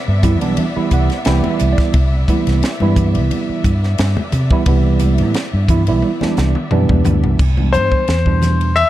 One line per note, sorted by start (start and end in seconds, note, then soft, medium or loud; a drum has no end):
0.00 7.35 C3 medium
0.00 7.35 B3 medium
0.00 7.35 D5 medium
0.00 7.36 E5 medium
0.08 0.42 G2 medium
0.23 0.35 E3 medium
0.23 0.35 G3 medium
0.23 0.36 B3 medium
0.23 0.36 E4 medium
0.23 kick medium
0.23 hi-hat pedal medium
0.23 ride medium
0.23 low conga medium
0.41 0.56 B1 medium
0.41 0.63 E3 medium
0.41 0.63 G3 medium
0.41 0.64 B3 medium
0.41 0.64 D4 medium
0.41 ride medium
0.57 ride medium
0.57 low conga medium
0.76 1.10 E3 medium
0.76 1.10 G3 medium
0.76 1.10 B3 medium
0.76 1.10 E4 medium
0.76 muted fingered electric bass stroke soft
0.91 1.08 C2 medium
0.91 1.24 F#5 medium
0.91 kick medium
0.91 hi-hat pedal medium
0.91 ride medium
1.10 snare soft
1.10 ride soft
1.25 1.42 C2 medium
1.25 1.94 E3 medium
1.25 1.94 G3 medium
1.25 1.94 B3 medium
1.25 1.94 E4 loud
1.25 1.48 G5 medium
1.25 snare medium
1.25 ride medium
1.44 muted fingered electric bass stroke soft
1.44 high conga medium
1.50 1.71 E5 medium
1.59 1.76 C2 medium
1.59 hi-hat pedal medium
1.59 ride medium
1.73 1.93 D5 medium
1.78 muted fingered electric bass stroke soft
1.78 kick medium
1.78 snare soft
1.78 ride medium
1.94 2.24 C2 medium
1.94 kick loud
1.94 ride medium
2.28 2.62 E3 medium
2.28 2.62 G3 medium
2.28 2.63 B3 medium
2.28 2.63 E4 medium
2.28 kick medium
2.28 hi-hat pedal medium
2.28 ride medium
2.28 high conga medium
2.47 2.61 C2 medium
2.47 snare soft
2.47 ride medium
2.63 snare medium
2.63 ride medium
2.80 3.16 G2 medium
2.80 3.70 E3 medium
2.80 3.70 G3 medium
2.80 3.70 B3 medium
2.80 3.71 E4 loud
2.80 high conga medium
2.96 kick medium
2.96 hi-hat pedal medium
2.96 ride soft
2.96 low conga medium
3.15 3.29 C2 medium
3.15 ride medium
3.31 ride medium
3.31 low conga medium
3.49 muted fingered electric bass stroke soft
3.64 3.94 G2 medium
3.64 kick medium
3.64 hi-hat pedal medium
3.64 ride medium
3.83 snare soft
3.98 4.15 G2 medium
3.98 snare loud
3.98 ride medium
4.17 high conga medium
4.32 4.49 C3 medium
4.32 hi-hat pedal medium
4.32 ride medium
4.32 low conga medium
4.51 4.62 E3 medium
4.51 4.62 G3 medium
4.51 4.62 B3 medium
4.51 4.62 E4 loud
4.51 kick medium
4.66 5.21 C2 loud
4.66 5.34 E3 medium
4.66 5.35 G3 medium
4.66 5.35 B3 medium
4.66 5.35 E4 medium
4.66 kick loud
4.66 ride medium
4.99 hi-hat pedal medium
4.99 ride medium
4.99 high conga medium
5.18 5.33 A2 medium
5.18 ride medium
5.34 snare medium
5.34 ride medium
5.54 5.89 G2 medium
5.68 5.81 E3 medium
5.68 5.81 G3 medium
5.68 5.81 B3 medium
5.68 5.82 E4 medium
5.68 kick medium
5.68 hi-hat pedal medium
5.68 ride medium
5.68 low conga medium
5.87 6.01 B1 medium
5.87 6.09 E3 medium
5.87 6.10 G3 medium
5.87 6.10 B3 medium
5.87 6.10 E4 loud
5.87 ride medium
6.02 high tom medium
6.21 6.55 E3 medium
6.21 6.55 G3 medium
6.21 6.55 B3 medium
6.21 6.55 D4 medium
6.21 muted fingered electric bass stroke soft
6.21 snare medium
6.21 high conga medium
6.37 6.53 C2 medium
6.37 snare medium
6.37 hi-hat pedal medium
6.55 mid tom medium
6.71 6.88 F#2 medium
6.71 7.39 E3 loud
6.71 7.39 G3 medium
6.71 7.39 B3 medium
6.71 7.39 D4 medium
6.71 mid tom medium
6.89 7.04 E2 medium
6.89 kick medium
6.89 high conga medium
7.04 7.22 D2 medium
7.04 floor tom medium
7.04 hi-hat pedal medium
7.04 low conga medium
7.24 7.38 C2 medium
7.24 floor tom medium
7.39 7.76 C2 medium
7.39 kick loud
7.39 crash medium
7.57 8.02 E3 medium
7.57 8.02 G3 medium
7.57 8.02 B3 medium
7.57 8.03 D4 medium
7.57 high conga medium
7.72 7.90 G2 medium
7.72 8.79 C5 medium
7.72 hi-hat pedal medium
7.72 ride soft
7.92 muted fingered electric bass stroke soft
7.92 kick medium
8.08 8.83 E2 medium
8.08 snare medium
8.08 ride medium
8.26 8.71 B2 medium
8.26 8.71 E3 medium
8.26 8.70 G3 medium
8.26 8.71 D4 medium
8.26 kick medium
8.42 snare soft
8.42 hi-hat pedal medium
8.42 ride soft
8.42 low conga medium
8.61 ride medium
8.76 8.90 E5 medium
8.76 ride medium